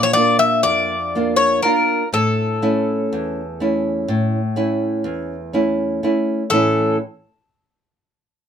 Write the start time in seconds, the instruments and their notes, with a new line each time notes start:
Already playing: nylon-string guitar A#2
0.03 bouzouki C#5
0.13 nylon-string guitar A#3 D4 F4, bouzouki D5
0.39 bouzouki E5
0.63 nylon-string guitar F2, bouzouki D5
1.15 nylon-string guitar A#3 D4 F4
1.36 bouzouki C#5
1.63 nylon-string guitar A#3 D4 F4, bouzouki A#4
2.13 nylon-string guitar A2, bouzouki A4
2.62 nylon-string guitar A3 C#4 E4
3.13 nylon-string guitar E2
3.60 nylon-string guitar A3 C#4 E4
4.08 nylon-string guitar A2
4.56 nylon-string guitar A3 C#4 E4
5.04 nylon-string guitar E2
5.53 nylon-string guitar A3 C#4 E4
6.03 nylon-string guitar A3 C#4 E4
6.50 nylon-string guitar A2 E3 A3 C#4 E4, bouzouki A4